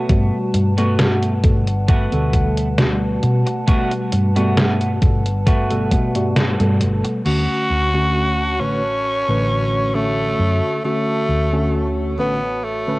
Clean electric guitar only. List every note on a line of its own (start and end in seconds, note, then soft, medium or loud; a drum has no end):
0.00 0.37 A3 medium
0.00 0.37 B3 medium
0.00 0.38 F#4 loud
0.54 muted clean electric guitar stroke soft
0.77 1.33 A3 medium
0.77 1.33 B3 medium
0.77 1.33 F#4 loud
1.88 2.67 A3 medium
1.88 2.67 B3 medium
1.88 2.68 F#4 loud
3.46 muted clean electric guitar stroke medium
3.67 3.91 A3 loud
3.67 3.91 B3 loud
3.67 3.92 F#4 loud
4.12 muted clean electric guitar stroke soft
4.36 4.91 A3 medium
4.36 4.91 B3 medium
4.36 4.92 F#4 loud
5.46 6.26 A3 medium
5.46 6.26 B3 medium
5.46 6.26 F#4 medium
7.04 muted clean electric guitar stroke medium